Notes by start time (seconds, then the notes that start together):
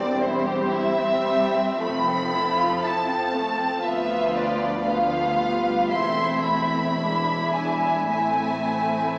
Already playing: E1 E2 G3 C4 C5 D5
0.21 E4 C5
0.47 G4
0.71 E4 E5
0.98 C4
1.27 G3
1.54 C4
1.81 F1 F2 F3 A3 A4 B5
2.07 C4
2.32 E4
2.57 F4
2.82 E4 A5
3.07 C4
3.32 A3
3.59 C4
3.84 D2 F3 B3 F4 B4 E5
4.36 D5
4.85 F3 B3 F4 B4 F5
5.38 G3
5.89 E1 E2 A3 C4 E4 E5 C6
6.44 B5
6.97 G#3 D4 E4 E5
7.53 G#5
8.10 A1 A2 A3 C4 E4 E5 G#5